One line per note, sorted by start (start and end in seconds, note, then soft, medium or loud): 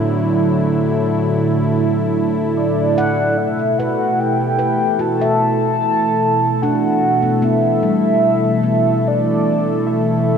0.00 3.37 A2 medium
0.00 3.38 D3 loud
0.00 3.37 F#3 medium
0.00 10.38 A3 medium
0.00 3.45 B3 soft
0.00 10.38 E4 loud
0.00 10.38 A4 medium
2.57 3.39 D5 loud
2.98 4.35 F#5 medium
3.37 10.38 B2 medium
3.37 3.80 E5 loud
3.78 4.57 B4 medium
3.78 4.21 F#5 loud
3.97 10.38 E3 medium
4.20 5.02 G5 loud
4.59 5.36 B4 medium
4.99 6.78 F#4 soft
4.99 6.64 A5 loud
5.21 8.84 E5 medium
6.62 7.60 D4 medium
6.62 7.46 F#5 loud
7.22 7.41 B3 medium
7.42 8.62 B3 medium
7.42 9.09 E5 loud
7.83 8.80 G3 medium
8.63 10.38 B3 soft
9.08 9.86 D5 medium
9.87 10.38 E5 loud